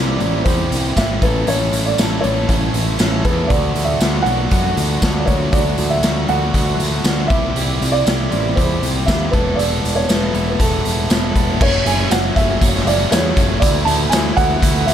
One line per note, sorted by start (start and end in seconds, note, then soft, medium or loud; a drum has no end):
0.00 0.16 C2 medium
0.00 0.20 E3 medium
0.00 0.19 C4 medium
0.00 0.21 E4 medium
0.00 0.21 G4 medium
0.00 0.46 D5 medium
0.20 0.42 A1 medium
0.20 0.46 E3 medium
0.20 0.45 C4 medium
0.20 0.47 E4 medium
0.20 0.46 G4 medium
0.20 closed hi-hat medium
0.45 0.67 E2 medium
0.45 0.97 E3 medium
0.45 0.97 C4 medium
0.45 0.98 E4 medium
0.45 0.98 G4 loud
0.45 0.97 C5 medium
0.45 kick medium
0.45 closed hi-hat medium
0.71 0.92 C2 medium
0.71 closed hi-hat medium
0.97 1.18 G#1 medium
0.97 1.22 E3 medium
0.97 1.21 C4 medium
0.97 1.23 E4 medium
0.97 1.21 G4 medium
0.97 1.20 E5 medium
0.97 kick medium
0.97 snare loud
0.97 closed hi-hat medium
0.97 tambourine loud
1.22 1.43 A1 medium
1.22 1.47 E3 medium
1.22 1.48 A3 medium
1.22 1.47 C#4 medium
1.22 1.48 A4 medium
1.22 1.46 B4 medium
1.22 kick medium
1.22 closed hi-hat medium
1.47 1.68 A1 medium
1.47 1.99 E3 medium
1.47 1.99 A3 medium
1.47 1.98 C#4 medium
1.47 2.00 A4 medium
1.47 1.87 C#5 medium
1.47 closed hi-hat medium
1.72 1.94 A1 medium
1.72 closed hi-hat medium
1.86 2.25 D5 medium
1.98 2.19 A1 medium
1.98 2.24 E3 medium
1.98 2.24 A3 medium
1.98 2.24 C#4 medium
1.98 2.25 A4 medium
1.98 snare medium
1.98 closed hi-hat medium
1.98 tambourine medium
2.21 2.45 A1 medium
2.21 2.48 E3 medium
2.21 2.69 C#5 medium
2.21 closed hi-hat medium
2.25 2.49 A3 medium
2.25 2.48 C#4 medium
2.25 2.50 A4 medium
2.48 2.70 A1 medium
2.48 2.98 E3 medium
2.48 2.99 A3 medium
2.48 2.98 C#4 medium
2.48 2.99 A4 medium
2.48 kick medium
2.48 closed hi-hat medium
2.74 2.95 A1 medium
2.74 closed hi-hat medium
2.98 3.21 A1 medium
2.98 3.25 E3 medium
2.98 3.26 A3 medium
2.98 3.25 C#4 medium
2.98 3.26 A4 medium
2.98 snare loud
2.98 closed hi-hat medium
2.98 tambourine loud
3.25 3.46 E2 medium
3.25 3.50 E3 medium
3.25 3.50 A3 medium
3.25 3.49 C#4 medium
3.25 3.51 A4 medium
3.25 3.51 B4 medium
3.25 kick medium
3.25 closed hi-hat medium
3.47 3.71 D2 medium
3.47 4.01 F#3 medium
3.47 4.01 A3 medium
3.47 3.88 D5 medium
3.47 kick loud
3.47 closed hi-hat medium
3.51 4.02 D4 medium
3.51 4.03 F#4 medium
3.75 3.96 D2 medium
3.75 closed hi-hat medium
3.84 4.25 E5 medium
4.01 4.22 D2 medium
4.01 4.25 F#3 medium
4.01 4.26 A3 medium
4.01 4.27 D4 medium
4.01 4.27 F#4 medium
4.01 snare loud
4.01 closed hi-hat medium
4.01 tambourine loud
4.23 4.47 B1 medium
4.23 4.71 F#5 loud
4.23 closed hi-hat soft
4.27 4.51 F#3 medium
4.27 4.51 A3 medium
4.27 4.52 D4 medium
4.27 4.52 F#4 medium
4.51 4.73 F#2 medium
4.51 5.01 F#3 medium
4.51 5.02 A3 medium
4.51 5.02 D4 loud
4.51 5.03 F#4 loud
4.51 kick medium
4.51 closed hi-hat medium
4.77 4.98 D2 medium
4.77 closed hi-hat medium
5.02 5.23 D2 medium
5.02 5.26 F#3 medium
5.02 5.27 A3 medium
5.02 5.28 D4 medium
5.02 5.27 F#4 medium
5.02 kick medium
5.02 snare medium
5.02 closed hi-hat medium
5.02 tambourine loud
5.18 5.26 D5 soft
5.26 5.49 D2 medium
5.26 5.52 F#3 medium
5.26 5.53 A3 medium
5.26 5.53 D4 medium
5.26 5.53 F#4 medium
5.26 5.53 C#5 medium
5.26 kick medium
5.26 closed hi-hat medium
5.52 5.74 D2 medium
5.52 6.03 F#3 medium
5.52 6.04 A3 medium
5.52 6.04 D4 medium
5.52 6.04 F#4 medium
5.52 5.88 D5 medium
5.52 kick loud
5.52 closed hi-hat medium
5.78 5.99 D2 medium
5.78 closed hi-hat medium
5.90 6.29 E5 medium
6.03 6.24 D2 medium
6.03 6.28 F#3 medium
6.03 6.29 A3 medium
6.03 6.30 D4 medium
6.03 6.30 F#4 medium
6.03 snare medium
6.03 closed hi-hat medium
6.03 tambourine medium
6.28 6.50 D2 medium
6.28 6.54 F#3 medium
6.28 6.54 A3 medium
6.28 6.55 D4 medium
6.28 6.55 F#4 medium
6.28 6.76 F#5 medium
6.28 closed hi-hat medium
6.54 6.75 D2 medium
6.54 7.05 F#3 medium
6.54 7.05 A3 medium
6.54 7.06 D4 medium
6.54 7.06 F#4 loud
6.54 kick medium
6.54 closed hi-hat medium
6.79 7.00 D2 medium
6.79 closed hi-hat medium
7.04 7.26 D2 medium
7.04 7.29 F#3 medium
7.04 7.29 A3 medium
7.04 7.30 D4 medium
7.04 7.30 F#4 medium
7.04 snare loud
7.04 closed hi-hat medium
7.04 tambourine medium
7.27 7.51 C2 medium
7.27 7.55 G3 medium
7.27 7.56 C4 medium
7.27 7.94 E5 medium
7.27 kick medium
7.27 closed hi-hat medium
7.31 7.57 E4 medium
7.31 7.56 G4 medium
7.56 7.77 C2 medium
7.56 8.05 G3 medium
7.56 8.05 C4 medium
7.56 8.06 E4 medium
7.56 8.06 G4 medium
7.56 closed hi-hat medium
7.81 8.02 C2 medium
7.81 closed hi-hat medium
7.92 8.58 D5 loud
8.06 8.28 C2 medium
8.06 8.31 G3 medium
8.06 8.31 C4 medium
8.06 8.32 E4 medium
8.06 8.32 G4 medium
8.06 snare medium
8.06 closed hi-hat medium
8.06 tambourine medium
8.32 8.53 A1 medium
8.32 8.56 G3 medium
8.32 8.57 C4 medium
8.32 8.57 E4 medium
8.32 8.58 G4 medium
8.32 closed hi-hat soft
8.56 8.78 E2 medium
8.56 9.06 G3 medium
8.56 9.07 C4 medium
8.56 9.07 E4 loud
8.56 9.07 G4 loud
8.56 9.08 C5 medium
8.56 kick medium
8.56 closed hi-hat medium
8.82 9.03 C2 medium
8.82 closed hi-hat medium
9.06 9.29 D#2 medium
9.06 9.31 G3 medium
9.06 9.31 C4 medium
9.06 9.32 E4 medium
9.06 9.32 G4 medium
9.06 9.33 E5 medium
9.06 kick medium
9.06 snare loud
9.06 closed hi-hat medium
9.06 tambourine loud
9.31 9.54 E1 medium
9.31 9.58 B3 medium
9.31 9.58 E4 medium
9.31 9.59 A4 medium
9.31 9.58 B4 medium
9.31 kick medium
9.31 closed hi-hat medium
9.56 9.80 E1 medium
9.56 10.08 B3 medium
9.56 10.08 E4 medium
9.56 9.96 D5 medium
9.56 closed hi-hat medium
9.60 10.09 A4 medium
9.84 10.05 E1 medium
9.84 closed hi-hat medium
9.96 10.09 C#5 medium
10.09 10.30 E1 medium
10.09 10.34 B3 medium
10.09 10.34 E4 medium
10.09 10.34 A4 medium
10.09 10.48 B4 medium
10.09 snare medium
10.09 closed hi-hat medium
10.09 tambourine loud
10.34 10.55 E1 medium
10.34 10.58 B3 medium
10.34 10.58 E4 medium
10.34 10.59 A4 medium
10.34 closed hi-hat medium
10.49 10.58 B4 soft
10.59 10.81 E1 medium
10.59 11.09 B3 medium
10.59 11.09 E4 loud
10.59 11.10 A4 medium
10.59 11.32 A4 medium
10.59 kick medium
10.59 closed hi-hat medium
10.85 11.06 E1 medium
10.85 closed hi-hat medium
11.10 11.31 E1 medium
11.10 11.34 B3 medium
11.10 11.35 E4 medium
11.10 11.36 A4 medium
11.10 snare loud
11.10 closed hi-hat medium
11.10 tambourine loud
11.36 11.56 E1 medium
11.36 11.59 B3 medium
11.36 11.59 E4 medium
11.36 11.60 A4 medium
11.36 kick medium
11.36 closed hi-hat medium
11.60 11.80 F#1 medium
11.60 13.59 C#3 medium
11.60 11.84 F#3 medium
11.60 14.94 A3 medium
11.60 11.85 A3 medium
11.60 11.85 C#4 loud
11.60 13.59 F#4 medium
11.60 11.87 C#5 medium
11.60 kick loud
11.60 crash loud
11.85 12.05 F#1 medium
11.85 12.10 F#3 loud
11.85 12.10 A3 medium
11.85 12.10 C#4 loud
11.85 12.12 G#5 medium
11.85 closed hi-hat medium
12.11 12.30 F#1 medium
12.11 12.36 F#3 medium
12.11 12.37 A3 medium
12.11 12.37 C#4 loud
12.11 12.37 F#5 medium
12.11 snare loud
12.11 closed hi-hat loud
12.11 tambourine loud
12.36 12.56 F#1 medium
12.36 12.61 F#3 medium
12.36 12.62 A3 medium
12.36 12.62 C#4 medium
12.36 12.87 E5 loud
12.36 kick medium
12.36 closed hi-hat medium
12.61 12.81 F#1 loud
12.61 12.86 F#3 loud
12.61 12.87 A3 loud
12.61 12.87 C#4 loud
12.61 kick medium
12.61 closed hi-hat loud
12.75 snare soft
12.86 13.05 F#1 medium
12.86 13.10 F#3 medium
12.86 13.12 A3 medium
12.86 13.12 C#4 loud
12.86 13.12 D5 medium
12.86 closed hi-hat medium
13.11 13.31 E2 loud
13.11 13.35 F#3 medium
13.11 13.37 A3 medium
13.11 13.36 C#4 loud
13.11 13.47 C#5 medium
13.11 snare loud
13.11 closed hi-hat loud
13.11 tambourine loud
13.37 13.56 F#1 medium
13.37 13.60 F#3 medium
13.37 13.62 A3 medium
13.37 13.60 C#4 medium
13.37 kick medium
13.37 closed hi-hat medium
13.60 13.81 D2 medium
13.60 14.94 D3 medium
13.60 13.86 E3 medium
13.60 13.86 A3 medium
13.60 13.87 E4 medium
13.60 14.94 E4 medium
13.60 13.86 D5 medium
13.60 kick loud
13.60 closed hi-hat loud
13.85 14.06 D2 medium
13.85 14.11 E3 medium
13.85 14.12 A3 loud
13.85 14.12 E4 loud
13.85 14.12 A5 loud
13.85 closed hi-hat medium
14.09 14.31 D2 loud
14.09 14.35 E3 loud
14.09 14.36 A3 loud
14.09 14.36 E4 loud
14.09 14.36 G#5 loud
14.09 snare loud
14.09 closed hi-hat loud
14.09 tambourine loud
14.35 14.57 D2 medium
14.35 14.60 E3 medium
14.35 14.61 A3 medium
14.35 14.62 E4 loud
14.35 14.88 F#5 loud
14.35 kick medium
14.35 closed hi-hat medium
14.61 14.81 D2 loud
14.61 14.86 E3 loud
14.61 14.86 A3 loud
14.61 14.87 E4 loud
14.61 kick medium
14.61 closed hi-hat loud
14.86 14.94 D2 medium
14.86 14.94 E3 medium
14.86 14.94 A3 loud
14.86 14.94 E4 medium
14.86 14.94 E5 loud
14.86 closed hi-hat medium